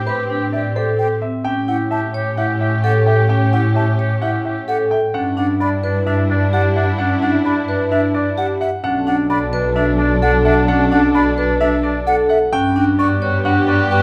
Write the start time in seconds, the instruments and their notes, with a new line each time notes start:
Already playing: double bass section A2, string section C4 G4
0.07 oboe G4, vibraphone B4, grand piano C5, flute B5
0.30 vibraphone D4, oboe G4
0.52 oboe G4, grand piano D5, flute E5
0.76 oboe G4, vibraphone A4, grand piano C5
0.99 oboe G4, flute G5
1.22 vibraphone C4, grand piano E5
1.45 double bass section A2, vibraphone C#4, string section C#4 G4, oboe G4, grand piano G5
1.68 vibraphone E4, oboe G4, flute F#5
1.91 oboe G4, grand piano E5, flute A5
2.14 oboe G4, vibraphone C#5
2.37 vibraphone E4, oboe G4, flute E5, grand piano F#5
2.60 oboe G4, grand piano E5
2.83 oboe G4, vibraphone A4, flute F#5
3.06 oboe G4, flute E5, grand piano G5
3.29 vibraphone C#4, oboe G4, grand piano G5
3.53 vibraphone E4, oboe G4, flute F#5
3.76 oboe G4, grand piano E5, flute A5
3.99 oboe G4, vibraphone C#5
4.22 vibraphone E4, oboe G4, flute E5, grand piano F#5
4.45 oboe G4, grand piano E5
4.68 oboe G4, vibraphone A4, flute F#5
4.91 flute E5, grand piano G5
5.14 double bass section G2, vibraphone C#4, oboe D4, string section D4 E4, grand piano F#5
5.37 vibraphone D4, oboe D4, flute F#5
5.60 oboe D4, grand piano D5, flute B5
5.83 oboe D4, vibraphone B4
6.07 vibraphone D4, oboe D4, grand piano E5, flute E5
6.30 oboe D4, grand piano D5
6.53 oboe D4, vibraphone G4, flute F#5
6.76 oboe D4, flute E5, grand piano F#5
6.98 vibraphone C#4, oboe D4, grand piano F#5
7.22 vibraphone D4, oboe D4, flute F#5
7.45 oboe D4, grand piano D5, flute B5
7.68 oboe D4, vibraphone B4
7.91 oboe D4, vibraphone D4, grand piano E5, flute E5
8.14 oboe D4, grand piano D5
8.38 oboe D4, vibraphone G4, flute F#5
8.61 flute E5, grand piano F#5
8.84 double bass section B1, vibraphone C#4, string section D4 A4, oboe D4, grand piano F#5
9.07 oboe D4, vibraphone D4, flute F#5
9.30 oboe D4, grand piano D5, flute B5
9.53 oboe D4, vibraphone B4
9.76 oboe D4, vibraphone D4, grand piano E5, flute E5
9.99 oboe D4, grand piano D5
10.22 oboe D4, vibraphone A4, flute F#5
10.45 oboe D4, flute E5, grand piano F#5
10.68 vibraphone C#4, oboe D4, grand piano F#5
10.91 vibraphone D4, oboe D4, flute F#5
11.15 oboe D4, grand piano D5, flute B5
11.38 oboe D4, vibraphone B4
11.61 vibraphone D4, oboe D4, grand piano E5, flute E5
11.83 oboe D4, grand piano D5
12.07 oboe D4, vibraphone A4, flute F#5
12.29 flute E5, grand piano F#5
12.53 double bass section G2, string section B3 G4, vibraphone C#4, oboe F#4, grand piano G5
12.76 vibraphone D4, oboe F#4, flute G5
12.99 oboe F#4, grand piano D5, flute C#6
13.21 oboe F#4, vibraphone C#5
13.44 vibraphone D4, oboe F#4, grand piano F#5, flute F#5
13.68 oboe F#4, grand piano D5
13.91 oboe F#4, vibraphone B4, flute G5